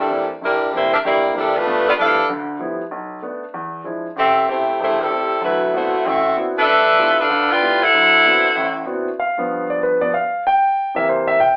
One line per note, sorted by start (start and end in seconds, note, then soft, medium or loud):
0.00 0.27 G3 medium
0.00 0.27 D4 medium
0.00 0.27 E4 medium
0.00 0.28 A4 medium
0.08 0.29 E3 soft
0.08 0.29 A3 soft
0.08 0.29 A#3 soft
0.08 0.29 C4 soft
0.08 0.29 D4 medium
0.41 0.67 G1 medium
0.41 0.71 G3 medium
0.41 0.71 D4 medium
0.41 0.71 E4 medium
0.41 0.71 A#4 medium
0.72 0.92 E3 soft
0.72 0.93 A3 soft
0.72 0.93 A#3 soft
0.72 0.92 A#3 medium
0.72 0.93 C4 soft
0.72 0.93 D4 medium
0.72 0.92 E4 medium
0.72 0.92 G4 medium
0.72 0.91 C5 medium
0.93 0.98 D4 medium
0.93 0.98 G4 medium
0.93 0.98 A#4 medium
0.93 0.98 E5 loud
1.04 1.30 G1 medium
1.04 1.33 A#3 medium
1.04 1.33 E4 medium
1.04 1.33 G4 medium
1.04 1.33 D5 medium
1.34 1.55 E3 soft
1.34 1.55 G3 medium
1.34 1.55 A3 soft
1.34 1.55 A#3 soft
1.34 1.55 C4 soft
1.34 1.55 D4 medium
1.34 1.55 E4 medium
1.34 1.55 A4 medium
1.56 1.86 A3 medium
1.56 1.87 D4 medium
1.56 1.86 F4 medium
1.56 1.86 B4 loud
1.66 1.93 G2 medium
1.66 1.92 B3 medium
1.88 1.93 B3 medium
1.88 1.92 F4 medium
1.88 1.93 A4 medium
1.88 1.93 D5 medium
1.98 2.18 F3 soft
1.98 2.18 G3 soft
1.98 2.18 A3 soft
1.98 2.18 B3 soft
1.98 2.27 D4 medium
1.98 2.18 E4 medium
1.98 2.27 A4 medium
1.98 2.27 B4 medium
1.98 2.27 F5 loud
2.29 2.56 D2 medium
2.29 2.56 D3 medium
2.59 2.80 F3 soft
2.59 2.80 G3 soft
2.59 2.80 A3 soft
2.59 2.81 B3 soft
2.59 2.81 E4 soft
2.91 3.18 B1 medium
3.22 3.43 A3 soft
3.22 3.43 B3 soft
3.22 3.43 D4 soft
3.54 3.81 E2 medium
3.84 4.05 F3 soft
3.84 4.05 G#3 soft
3.84 4.06 D4 soft
3.84 4.06 E4 soft
4.16 4.43 A1 medium
4.16 4.47 C4 medium
4.16 4.47 G4 medium
4.16 4.47 A4 medium
4.16 4.47 E5 medium
4.48 4.68 A3 soft
4.48 4.78 A3 medium
4.48 4.69 C4 soft
4.48 4.78 E4 medium
4.48 4.69 G4 medium
4.48 4.78 G4 medium
4.48 4.78 C5 medium
4.79 5.06 E1 medium
4.79 4.99 A3 medium
4.79 4.98 E4 medium
4.79 4.98 G4 medium
4.79 4.99 C5 medium
5.01 5.43 G3 medium
5.01 5.43 C4 medium
5.01 5.42 E4 medium
5.01 5.43 A4 medium
5.09 5.31 A3 soft
5.09 5.31 C4 soft
5.09 5.31 G4 medium
5.41 5.68 D2 medium
5.41 5.68 F#3 medium
5.41 5.71 A3 medium
5.41 5.72 E4 medium
5.41 5.72 F#4 medium
5.41 5.71 B4 medium
5.73 6.06 A3 medium
5.73 5.94 B3 soft
5.73 5.94 C4 soft
5.73 5.94 D4 soft
5.73 5.94 E4 soft
5.73 6.06 E4 medium
5.73 5.94 F#4 medium
5.73 6.05 F#4 medium
5.73 6.06 C5 medium
6.06 6.32 A1 medium
6.06 6.32 A2 medium
6.06 6.37 C4 medium
6.06 6.37 F#4 medium
6.06 6.37 A4 medium
6.06 6.37 E5 medium
6.37 6.57 B3 soft
6.37 6.57 C4 soft
6.37 6.57 D4 soft
6.37 6.57 E4 soft
6.37 6.58 F#4 medium
6.58 7.16 D4 medium
6.58 7.16 A4 medium
6.58 7.16 B4 medium
6.58 7.16 E5 medium
6.68 6.95 G2 medium
6.99 7.20 A3 soft
6.99 7.20 B3 soft
6.99 7.20 E4 soft
6.99 7.20 F4 soft
6.99 7.20 G4 medium
7.20 7.50 D4 medium
7.20 7.51 A4 medium
7.20 7.50 B4 medium
7.20 7.51 F5 loud
7.30 7.57 D2 medium
7.30 7.57 D3 medium
7.51 7.82 F4 medium
7.51 7.82 B4 medium
7.51 7.82 D5 medium
7.51 7.82 G5 loud
7.61 7.82 A3 soft
7.61 7.82 B3 soft
7.61 7.82 E4 soft
7.61 7.82 F4 soft
7.61 7.83 G4 medium
7.82 8.88 E4 medium
7.82 8.88 A4 medium
7.82 8.88 C5 medium
7.82 8.88 F#5 loud
7.94 8.20 D2 medium
7.94 8.20 F#3 medium
8.24 8.45 B3 soft
8.24 8.45 C4 soft
8.24 8.46 D4 soft
8.24 8.45 E4 soft
8.24 8.46 F#4 soft
8.55 8.83 A1 medium
8.55 8.82 A2 medium
8.86 9.07 B3 soft
8.86 9.07 C4 soft
8.86 9.08 D4 soft
8.86 9.08 E4 soft
8.86 9.07 F#4 soft
9.19 9.66 F5 medium
9.37 9.99 G2 soft
9.37 10.00 F3 soft
9.37 10.00 B3 soft
9.70 9.81 D5 medium
9.83 10.01 B4 soft
10.01 10.11 G2 soft
10.01 10.12 F3 soft
10.01 10.12 B3 soft
10.01 10.12 D5 medium
10.14 10.42 F5 medium
10.47 10.93 G5 medium
10.95 11.36 C3 soft
10.95 11.36 E3 soft
10.95 11.37 A#3 soft
10.95 11.07 E5 medium
11.09 11.27 C5 medium
11.28 11.38 E5 medium
11.40 11.57 G5 medium